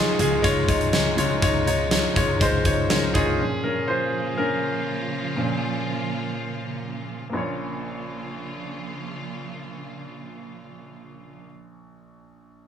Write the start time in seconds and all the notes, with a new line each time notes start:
Already playing: C#3 F3 G#3 D#4 F4 G#4 C#5
0.18 C#2 G#3 D#4 F4 G#4, closed hi-hat
0.42 C#2 G#3 D#4 F4 C#5, kick, closed hi-hat
0.67 C#2 G#3 D#4 F4 C#5, kick, closed hi-hat
0.81 closed hi-hat
0.92 C#2 G#3 D#4 F4 C#5, snare, closed hi-hat
1.16 C#2 C#3 G#3 D#4 F4 C#5, closed hi-hat
1.41 C#2 G#3 D#4 F4 C#5, kick, closed hi-hat
1.66 G#3 D#4 F4 C#5, closed hi-hat
1.90 G#3 D#4 F4 C#5, snare, closed hi-hat
2.15 C#2 G#3 D#4 F4 C#5, kick, closed hi-hat
2.40 C#2 G#3 D#4 F4 C5, kick, closed hi-hat
2.65 C#2 G#3 D#4 F4 C#5, kick, closed hi-hat
2.89 C#2 G#3 C#4 D#4 F4 A#4 C#5, snare, closed hi-hat
3.14 C#2 G#3 C#4 D#4 F4 G#4 C#5, kick, closed hi-hat
3.39 A#2 C#3 F3 A#3 C#4 F4
3.64 C#4 A#4
3.88 F4 C5
4.38 C#4 A#4
5.36 A#2 F3 C#4
7.30 A#1 C#3 F3 A#3 C#4 F4
7.34 A#3 F4 C#5